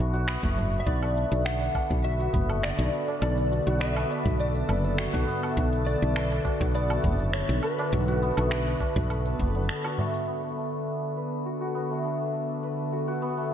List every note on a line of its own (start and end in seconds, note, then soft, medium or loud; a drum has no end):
0.00 0.36 B1 medium
0.00 0.42 A3 medium
0.00 0.27 B3 medium
0.00 0.57 D4 medium
0.00 0.13 F#4 medium
0.00 1.74 B4 medium
0.13 2.04 F#4 medium
0.13 tabla tin medium
0.13 shaker soft
0.27 0.86 B3 loud
0.27 finger snap medium
0.27 shaker soft
0.43 0.80 F#1 loud
0.43 1.02 A3 medium
0.43 kick loud
0.43 tabla tin soft
0.43 shaker soft
0.57 1.15 D4 medium
0.57 tabla tin medium
0.57 tabla ge medium
0.57 shaker medium
0.73 shaker soft
0.80 0.87 E5 medium
0.86 1.24 B1 medium
0.86 10.24 D3 medium
0.86 2.33 B3 medium
0.86 10.24 B3 medium
0.86 10.24 A4 medium
0.86 1.47 D5 medium
0.86 kick loud
0.86 closed hi-hat medium
0.86 shaker soft
1.02 2.48 A3 medium
1.02 closed hi-hat soft
1.02 low woodblock medium
1.02 shaker soft
1.16 2.62 D4 medium
1.16 shaker medium
1.32 1.68 B1 medium
1.32 closed hi-hat soft
1.32 shaker soft
1.45 2.06 F#5 loud
1.45 finger snap medium
1.45 closed hi-hat medium
1.45 shaker soft
1.61 tabla na soft
1.61 shaker soft
1.75 3.21 B4 medium
1.75 kick medium
1.75 tabla na medium
1.75 low woodblock medium
1.75 shaker medium
1.91 2.27 B1 medium
1.91 kick loud
1.91 tabla tin medium
1.91 shaker soft
2.04 2.19 F#4 medium
2.04 2.63 E5 loud
2.04 closed hi-hat medium
2.04 shaker soft
2.19 3.51 F#4 medium
2.19 closed hi-hat soft
2.19 shaker soft
2.33 2.71 F#1 medium
2.33 3.80 B3 medium
2.33 kick loud
2.33 tabla ge medium
2.33 shaker medium
2.49 3.96 A3 medium
2.49 closed hi-hat soft
2.49 tabla tin medium
2.49 low woodblock medium
2.49 shaker soft
2.63 4.09 D4 medium
2.63 3.21 D5 medium
2.63 finger snap medium
2.63 closed hi-hat medium
2.63 shaker soft
2.78 2.88 B1 medium
2.78 shaker soft
2.93 shaker medium
3.08 closed hi-hat soft
3.08 tabla na medium
3.08 shaker soft
3.22 3.59 B1 medium
3.22 4.68 B4 medium
3.22 3.83 D5 medium
3.22 closed hi-hat medium
3.22 low woodblock medium
3.22 shaker soft
3.38 closed hi-hat soft
3.38 shaker soft
3.51 3.66 F#4 medium
3.51 shaker medium
3.67 4.03 B1 medium
3.67 4.98 F#4 loud
3.67 closed hi-hat soft
3.67 shaker soft
3.80 5.27 B3 loud
3.80 4.35 E5 medium
3.80 finger snap medium
3.80 closed hi-hat medium
3.80 shaker soft
3.96 5.42 A3 medium
3.96 tabla na soft
3.96 low woodblock medium
3.96 shaker soft
4.10 5.56 D4 medium
4.10 tabla na medium
4.10 shaker medium
4.25 4.62 B1 medium
4.25 kick loud
4.25 tabla tin medium
4.25 tabla ge medium
4.25 shaker soft
4.40 5.24 D5 medium
4.40 closed hi-hat medium
4.40 shaker soft
4.55 closed hi-hat soft
4.55 tabla tin soft
4.55 shaker soft
4.69 5.06 F#1 medium
4.69 6.15 B4 medium
4.69 low woodblock medium
4.69 shaker medium
4.85 closed hi-hat soft
4.85 tabla tin medium
4.85 shaker soft
4.98 5.13 F#4 medium
4.98 finger snap loud
4.98 closed hi-hat medium
4.98 shaker soft
5.13 5.24 B1 medium
5.13 6.44 F#4 loud
5.13 kick loud
5.13 tabla tin medium
5.13 shaker soft
5.27 6.74 B3 loud
5.27 tabla tin medium
5.27 tabla ge medium
5.27 shaker medium
5.42 6.89 A3 medium
5.42 closed hi-hat soft
5.42 low woodblock medium
5.42 shaker soft
5.56 5.95 B1 loud
5.56 7.03 D4 medium
5.56 kick loud
5.56 closed hi-hat medium
5.56 shaker soft
5.73 closed hi-hat soft
5.73 shaker soft
5.87 6.74 D5 loud
5.87 shaker medium
6.02 6.39 B1 medium
6.02 closed hi-hat soft
6.02 shaker soft
6.15 7.63 B4 medium
6.15 finger snap medium
6.15 closed hi-hat medium
6.15 low woodblock medium
6.15 shaker soft
6.31 tabla na soft
6.31 shaker soft
6.45 6.60 F#4 medium
6.45 kick medium
6.45 tabla na medium
6.45 shaker medium
6.60 6.97 B1 medium
6.60 7.92 F#4 loud
6.60 kick medium
6.60 tabla tin medium
6.60 shaker soft
6.74 8.22 B3 medium
6.74 7.33 D5 loud
6.74 closed hi-hat medium
6.74 shaker soft
6.90 8.37 A3 medium
6.90 closed hi-hat soft
6.90 low woodblock medium
6.90 shaker soft
7.03 7.41 F#1 medium
7.03 8.51 D4 medium
7.03 kick loud
7.03 tabla ge medium
7.03 shaker medium
7.19 closed hi-hat soft
7.19 tabla tin medium
7.19 shaker soft
7.33 7.64 C#5 loud
7.33 finger snap loud
7.33 closed hi-hat medium
7.33 shaker soft
7.49 7.59 B1 medium
7.49 shaker soft
7.63 9.10 B4 medium
7.63 9.65 B4 medium
7.63 low woodblock medium
7.63 shaker medium
7.79 closed hi-hat soft
7.79 tabla na medium
7.79 shaker soft
7.92 8.30 B1 medium
7.92 8.08 F#4 medium
7.92 closed hi-hat medium
7.92 tabla ge medium
7.92 shaker soft
8.08 9.84 F#4 loud
8.08 closed hi-hat soft
8.08 shaker soft
8.22 9.39 B3 loud
8.22 shaker medium
8.37 8.74 B1 medium
8.37 9.98 A3 medium
8.37 closed hi-hat soft
8.37 low woodblock medium
8.37 shaker soft
8.51 9.68 D4 medium
8.51 finger snap medium
8.51 closed hi-hat medium
8.51 shaker soft
8.67 closed hi-hat soft
8.67 tabla na soft
8.67 shaker soft
8.80 kick medium
8.80 tabla na medium
8.80 shaker medium
8.96 9.33 B1 medium
8.96 kick medium
8.96 closed hi-hat soft
8.96 tabla tin medium
8.96 tabla ge medium
8.96 shaker soft
9.10 11.16 B4 medium
9.10 closed hi-hat medium
9.10 low woodblock medium
9.10 shaker soft
9.26 closed hi-hat soft
9.26 tabla tin medium
9.26 shaker soft
9.39 9.69 F#1 medium
9.39 9.54 B3 medium
9.39 kick medium
9.39 tabla na soft
9.39 shaker medium
9.55 10.27 B3 medium
9.55 closed hi-hat soft
9.55 tabla tin medium
9.55 shaker soft
9.69 10.57 D4 medium
9.69 finger snap loud
9.69 closed hi-hat medium
9.69 shaker soft
9.84 11.45 F#4 medium
9.84 closed hi-hat soft
9.84 tabla tin medium
9.84 low woodblock medium
9.84 shaker soft
9.98 10.43 A3 medium
9.98 tabla tin medium
9.98 tabla ge medium
9.98 shaker medium
10.14 closed hi-hat soft
10.14 shaker soft
10.27 13.54 D3 medium
10.27 11.74 B3 medium
10.27 13.54 B3 medium
10.27 13.54 A4 medium
10.27 shaker soft
10.43 11.90 A3 medium
10.43 shaker soft
10.57 12.04 D4 medium
10.57 shaker medium
10.73 shaker soft
10.87 shaker soft
11.03 shaker soft
11.16 12.62 B4 medium
11.16 shaker medium
11.32 shaker soft
11.46 11.60 F#4 medium
11.46 shaker soft
11.61 12.92 F#4 medium
11.61 shaker soft
11.75 13.21 B3 medium
11.75 shaker medium
11.90 13.37 A3 medium
11.90 shaker soft
12.04 13.51 D4 medium
12.04 shaker soft
12.20 shaker soft
12.34 shaker medium
12.50 shaker soft
12.63 13.54 B4 medium
12.63 shaker soft
12.79 shaker soft
12.92 13.07 F#4 medium
12.92 shaker medium
13.08 13.54 F#4 medium
13.08 shaker soft
13.22 13.54 B3 medium
13.22 shaker soft
13.37 13.54 A3 medium
13.37 shaker soft